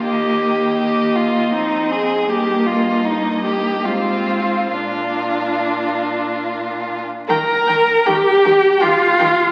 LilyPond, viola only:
\new Staff \with { instrumentName = "Viola" } { \time 3/4 \key ees \major \tempo 4 = 78 bes2 c'4 | bes4 bes4 c'4 | d'2~ d'8. r16 | bes'4 g'4 f'4 | }